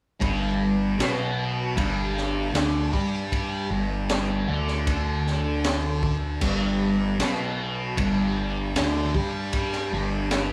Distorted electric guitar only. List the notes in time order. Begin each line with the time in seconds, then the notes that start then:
0.20 G2 G3
0.98 B2 B3
1.76 G2 G3
2.54 D3 D4
2.92 G3 G4
3.71 G2 G3
4.49 D3 D4
6.41 G2 G3
7.19 B2 B3
7.98 G2 G3
8.76 D3 D4
9.15 G3 G4
9.94 G2 G3